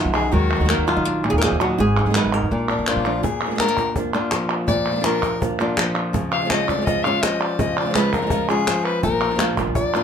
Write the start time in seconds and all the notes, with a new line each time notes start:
Already playing: F#2 B2 D#3 F#3 B3 D#4 F4 F#4
0.05 B1
0.14 D3 B3 D#4 F#4 G#4, clap
0.32 D#2 D#3 F#3 G#3 F#4 A#4, muted nylon-string guitar stroke
0.55 D#3 A#3 D#4 F#4
0.60 D#2 D#3 A#3 D#4 F#4
0.65 D#3 A#3 D#4 F#4
0.69 D#3 A#3 D#4 F#4 A#4, clap
0.78 D#2
0.87 F#3 A#3 D#4 F4 F#4, clap
0.97 A#1 D#4
1.05 D4, muted nylon-string guitar stroke
1.24 A#2
1.30 D#2 G#4
1.38 D#3 A#4, clap
1.42 F3 A#3 D#4 F#4 G#4
1.52 D#2
1.60 F#3 A#3 D#4 F#4, clap
1.78 G#1 G#2 G#4, muted nylon-string guitar stroke
1.99 D#4
2.06 G#1 G#3 B3 D#4 G#4
2.10 G#3 B3 D#4 G#4
2.15 F#2 D#3 G#3 B3 D#4 G#4 B4, clap
2.24 G#1
2.32 G#2 B3 D#4 G#4 A#4
2.42 F2
2.51 A#1 A#2 D4, muted nylon-string guitar stroke
2.71 D4
2.78 A#1
2.87 F3 A#3 D4 F4, clap
2.96 A#1
3.05 F3 A#3 D4 F4, clap
3.23 A#2 G#4, muted nylon-string guitar stroke, cajon bass
3.43 F3 A#3 D4, cajon slap
3.47 F3 A#3 F4
3.51 F3 D4 F4
3.55 F3 G#3 A#3 D4 F4, clap
3.60 A#3 D4 F4 A#4, cajon slap
3.68 A#3
3.77 A#3 D4 F4, cajon bass, clap
3.96 F3 A#3 D4 F4, cajon bass
4.14 A#3 D4 F4, cajon slap
4.31 F3, muted nylon-string guitar stroke, cajon slap, clap
4.68 A#2 D5, muted nylon-string guitar stroke, cajon bass
4.86 cajon slap
4.91 F3 A#3 D4 F4
4.96 F3 A#3 D4 F4
5.00 F3 A#3 D4 F4, cajon slap
5.04 F3 A#3 D4 F4 A#4, clap
5.23 A#3 D4 F4, cajon bass
5.41 F3 A#3 D4 F4, cajon bass
5.59 A#3 D4 F4, cajon slap
5.77 F3, muted nylon-string guitar stroke, cajon slap, clap
5.95 clap
6.13 C#3, muted nylon-string guitar stroke, cajon bass
6.32 F5
6.41 F3 G#3 C#4 F4
6.45 F3 G#3 C#4 F4
6.50 C#3 F3 G#3 C#4 F4 D#5, cajon slap, clap
6.68 G#3 C#4 F4 D5, cajon bass
6.73 F3 G#3 C#4 F4
6.77 F3 G#3 C#4 F4
6.82 F3 G#3 C#4 F4 D#5
6.86 C#3 F3 G#3 C#4 F4, cajon bass
7.04 G#3 C#4 F4 F5
7.22 F3 D#5, muted nylon-string guitar stroke, cajon slap, clap
7.41 D5
7.59 C#3 D#5, muted nylon-string guitar stroke, cajon bass
7.77 F3 D5
7.82 F3 G#3 C#4 F4
7.86 F3 G#3 C#4 F4
7.91 C#3 G#3 C#4 F4, clap
7.95 F3 G#3 C#4 F4 B4, cajon slap
8.12 G#3 C#4 F4 A#4, cajon bass, clap
8.17 F3 G#3 C#4 F4
8.22 F3 G#3 C#4 F4
8.26 F3 G#3 C#4 F4, cajon bass
8.31 C#3 F3 G#3 C#4 F4
8.49 G#3 C#4 F4 G#4
8.67 F3, muted nylon-string guitar stroke, cajon slap, clap
8.85 B4
9.03 A#1 A#2 A#4, muted nylon-string guitar stroke, cajon bass
9.22 cajon slap
9.31 F3 A#3 D4 F4
9.35 F3 A#3 D4 F4, cajon slap
9.39 F3 A#3 D4 F4, clap
9.57 A#1 F3 A#3 D4 F4, cajon bass, clap
9.67 A#1
9.75 A#3 D4 F4 D5, cajon bass
9.95 A#3 D4 F4